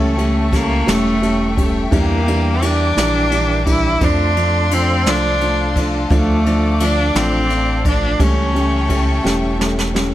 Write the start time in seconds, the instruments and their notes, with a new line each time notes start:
Already playing: fm bass C#2, steel-string acoustic guitar C#3 E3 G3 C#4 E4 A4, cello A3, string section A4 E5 G5 C#6
0.17 upright piano G3 A3 C#4, ride
0.51 steel-string acoustic guitar G3 C#4 E4 A4, upright piano G3 A3 C#4, cello A#3, kick, snare, ride
0.86 fm bass E1, steel-string acoustic guitar C#3 E3 G3 C#4 E4 A4, upright piano G3 A3 C#4, cello A3, snare, ride
1.21 upright piano G3 A3 C#4, ride
1.56 upright piano G3 A3 C#4, steel-string acoustic guitar G3 C#4 E4 A4, kick, ride
1.91 fm bass E2, steel-string acoustic guitar E3 G3 D4 E4 A#4, upright piano E3 G3 D4, cello A#3, string section A#4 D6, kick, ride
2.27 upright piano E3 G3 D4, ride
2.61 upright piano E3 G3 D4, steel-string acoustic guitar G3 D4 E4 A#4, cello D4, ride
2.96 fm bass A#1, upright piano E3 G3 D4, steel-string acoustic guitar E3 G3 D4 E4 A#4, snare, ride
3.31 upright piano E3 G3 D4, ride
3.66 upright piano E3 G3 D4, steel-string acoustic guitar D4 E4 A#4, cello E4, kick, ride
4.00 fm bass F2, steel-string acoustic guitar F3 A3 D4 A4 C5, upright piano F3 A3 D4, cello D4, string section A4 D5 F5 C6, kick, ride
4.36 upright piano F3 A3 D4, ride
4.70 upright piano F3 A3 D4, steel-string acoustic guitar A3 D4 A4 C5, cello C4, ride
5.05 fm bass C2, upright piano F3 A3 D4, steel-string acoustic guitar F3 A3 D4 A4 C5, cello D4, snare, ride
5.41 upright piano F3 A3 D4, ride
5.75 upright piano F3 A3 D4, steel-string acoustic guitar D4 A4 C5, kick, ride
6.10 fm bass D2, steel-string acoustic guitar D3 A3 D4 F4 A4, upright piano F3 A3 D4, string section D5 D6, kick, ride
6.14 cello A3
6.45 upright piano F3 A3 D4, ride
6.79 upright piano F3 A3 D4, steel-string acoustic guitar A3 D4 F4 A4, cello D4, ride
7.14 fm bass A1, steel-string acoustic guitar D3 A3 D4 F4 A4, upright piano F3 A3 D4, cello C4, snare, ride
7.50 upright piano A3 D4, ride
7.84 upright piano F3 A3 D4, steel-string acoustic guitar D4 F4 A4, cello D4, kick, ride
8.19 fm bass C#2, steel-string acoustic guitar C#3 E3 G3 C#4 E4 A4, upright piano G3 A3 C#4, cello C#4, string section A4 E5 G5 C#6, kick, ride
8.54 upright piano G3 A3 C#4, ride
8.89 steel-string acoustic guitar G3 C#4 E4 A4, upright piano G3 A3 C#4, kick, ride
9.24 fm bass E1, steel-string acoustic guitar C#3 E3 G3 C#4 E4 A4, upright piano G3 A3 C#4, snare
9.59 upright piano G3 A3 C#4, snare
9.79 snare
9.93 upright piano C#3 G3 A3 C#4, steel-string acoustic guitar G3 C#4 E4 A4, snare